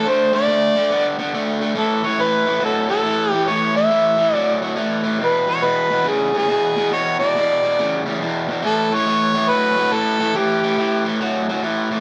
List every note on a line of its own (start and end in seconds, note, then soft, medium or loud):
0.00 0.10 A4 medium
0.05 0.30 D3 medium
0.05 0.30 A3 medium
0.05 0.34 C5 medium
0.33 0.46 D3 medium
0.33 0.46 A3 medium
0.33 1.15 D5 loud
0.48 0.73 D3 medium
0.48 0.73 A3 medium
0.76 0.89 D3 medium
0.76 0.89 A3 medium
0.91 1.16 D3 medium
0.91 1.15 B3 medium
1.19 1.32 D3 medium
1.19 1.32 B3 medium
1.34 1.59 D3 medium
1.34 1.59 A3 medium
1.61 1.74 D3 medium
1.61 1.75 A3 medium
1.75 2.01 A2 medium
1.75 2.01 E3 medium
1.75 2.07 A4 medium
2.04 2.17 A2 medium
2.04 2.17 E3 medium
2.04 2.23 C#5 medium
2.19 2.44 A2 medium
2.19 2.44 E3 medium
2.19 2.63 B4 medium
2.45 2.59 A2 medium
2.45 2.60 E3 medium
2.60 2.86 A2 medium
2.60 2.86 F#3 medium
2.65 2.89 A4 medium
2.88 3.02 A2 medium
2.88 3.03 F#3 medium
2.88 3.31 A4 medium
3.03 3.29 A2 medium
3.03 3.30 E3 medium
3.31 3.46 A2 medium
3.31 3.46 E3 medium
3.31 3.50 G4 medium
3.47 3.72 A2 medium
3.47 3.73 E3 medium
3.47 3.76 C#5 medium
3.75 3.89 A2 medium
3.75 3.89 E3 medium
3.75 4.35 E5 loud
3.91 4.16 A2 medium
3.91 4.16 E3 medium
4.17 4.31 A2 medium
4.17 4.32 E3 medium
4.34 4.59 A2 medium
4.34 4.59 F#3 medium
4.34 4.58 D5 loud
4.62 4.75 A2 medium
4.62 4.75 F#3 medium
4.76 5.01 A2 medium
4.76 5.01 E3 medium
5.04 5.17 A2 medium
5.04 5.17 E3 medium
5.19 5.44 E2 medium
5.19 5.45 B2 medium
5.24 5.52 B4 medium
5.47 5.60 E2 medium
5.47 5.61 B2 medium
5.47 5.66 C#5 medium
5.62 5.87 E2 medium
5.62 5.87 B2 medium
5.62 6.10 B4 medium
5.90 6.03 E2 medium
5.90 6.04 B2 medium
6.04 6.30 E2 medium
6.04 6.30 C#3 medium
6.09 6.35 G#4 medium
6.33 6.46 E2 medium
6.33 6.47 C#3 medium
6.38 6.90 G#4 medium
6.48 6.73 E2 medium
6.48 6.74 B2 medium
6.76 6.89 E2 medium
6.76 6.90 B2 medium
6.91 7.16 E2 medium
6.91 7.16 B2 medium
6.91 7.18 C#5 medium
7.19 7.32 E2 medium
7.19 7.33 B2 medium
7.19 8.01 D5 medium
7.35 7.60 E2 medium
7.35 7.60 B2 medium
7.63 7.76 E2 medium
7.63 7.76 B2 medium
7.79 8.03 E2 medium
7.79 8.03 C#3 medium
8.06 8.19 E2 medium
8.06 8.19 C#3 medium
8.21 8.45 E2 medium
8.21 8.46 B2 medium
8.48 8.61 E2 medium
8.48 8.61 B2 medium
8.62 8.88 A2 medium
8.62 8.88 E3 medium
8.62 8.96 A4 medium
8.91 9.04 A2 medium
8.91 9.04 E3 medium
8.91 9.51 C#5 loud
9.07 9.31 A2 medium
9.07 9.31 E3 medium
9.34 9.47 A2 medium
9.34 9.47 E3 medium
9.48 9.73 A2 medium
9.48 9.74 F#3 medium
9.48 9.95 B4 medium
9.77 9.90 A2 medium
9.77 9.90 F#3 medium
9.92 10.17 A2 medium
9.92 10.17 E3 medium
9.92 10.38 A4 medium
10.20 10.33 A2 medium
10.20 10.33 E3 medium
10.35 10.60 A2 medium
10.35 10.60 E3 medium
10.35 11.21 G4 medium
10.63 10.76 A2 medium
10.63 10.76 E3 medium
10.78 11.02 A2 medium
10.78 11.03 E3 medium
11.04 11.18 A2 medium
11.04 11.18 E3 medium
11.21 11.45 A2 medium
11.21 11.45 F#3 medium
11.49 11.62 A2 medium
11.49 11.62 F#3 medium
11.63 11.88 A2 medium
11.63 11.88 E3 medium
11.91 12.00 A2 medium
11.91 12.00 E3 medium